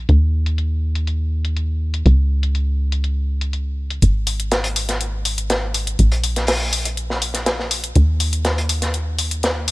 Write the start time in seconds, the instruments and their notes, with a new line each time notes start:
0.09 analog synth bass D#2, closed hi-hat
0.46 closed hi-hat
0.58 closed hi-hat
0.95 closed hi-hat
1.07 closed hi-hat
1.45 closed hi-hat
1.57 closed hi-hat
1.94 closed hi-hat
2.06 analog synth bass C#2, closed hi-hat
2.43 closed hi-hat
2.55 closed hi-hat
2.92 closed hi-hat
3.04 closed hi-hat
3.41 closed hi-hat
3.53 closed hi-hat
3.90 closed hi-hat
4.02 analog synth bass G#1, closed hi-hat, shaker
4.27 open hi-hat
4.40 closed hi-hat
4.52 snare, closed hi-hat
4.64 closed hi-hat
4.76 open hi-hat
4.89 snare, closed hi-hat
5.01 closed hi-hat, shaker
5.25 open hi-hat
5.38 closed hi-hat
5.50 snare, closed hi-hat, shaker
5.74 open hi-hat
5.87 closed hi-hat
5.99 analog synth bass A#1, closed hi-hat, shaker
6.12 closed hi-hat
6.24 open hi-hat
6.36 snare, closed hi-hat
6.47 snare, closed hi-hat, open hi-hat
6.73 open hi-hat
6.85 closed hi-hat
6.97 closed hi-hat, shaker
7.10 snare
7.22 open hi-hat
7.34 snare, closed hi-hat
7.46 snare, closed hi-hat, shaker
7.59 snare
7.71 open hi-hat
7.84 closed hi-hat
7.96 analog synth bass D#2, closed hi-hat, shaker
8.20 open hi-hat
8.33 closed hi-hat
8.45 snare, closed hi-hat, shaker
8.58 closed hi-hat
8.69 open hi-hat
8.82 snare, closed hi-hat
8.94 closed hi-hat
9.19 open hi-hat
9.31 closed hi-hat
9.43 snare, closed hi-hat, shaker
9.68 open hi-hat